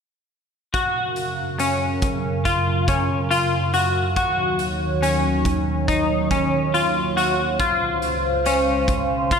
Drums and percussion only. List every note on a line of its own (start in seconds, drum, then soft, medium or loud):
0.74 kick medium
0.74 closed hi-hat soft
1.16 closed hi-hat soft
1.59 closed hi-hat medium
2.02 kick medium
2.02 closed hi-hat soft
2.45 kick medium
2.45 closed hi-hat medium
2.88 kick medium
2.88 closed hi-hat medium
3.31 closed hi-hat medium
3.74 closed hi-hat soft
4.16 kick medium
4.16 closed hi-hat soft
4.59 closed hi-hat soft
5.03 closed hi-hat medium
5.45 kick medium
5.45 closed hi-hat soft
5.88 kick medium
5.88 closed hi-hat medium
6.31 kick medium
6.31 closed hi-hat medium
6.74 closed hi-hat medium
7.17 closed hi-hat soft
7.60 kick medium
7.60 closed hi-hat medium
8.02 closed hi-hat soft
8.46 closed hi-hat medium
8.88 kick medium
8.88 closed hi-hat soft
9.31 kick medium
9.31 closed hi-hat medium